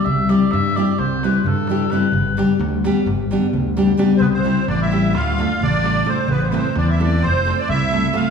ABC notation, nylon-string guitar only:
X:1
M:9/8
L:1/8
Q:3/8=87
K:G
V:1 name="Nylon-string guitar"
z [G,CEG] z [G,CEG] z [G,CEG] z [G,CEG] [G,CEG] | z [G,B,DG] z [G,B,DG] z [G,B,DG] z [G,B,DG] [G,B,DG] | [K:C] z [G,CEG] z [G,CEG] z [A,DFA] z [A,DFA] [A,DFA] | z [A,CEA] z [A,CEA] z [A,CFA] z [A,CFA] [A,CFA] |]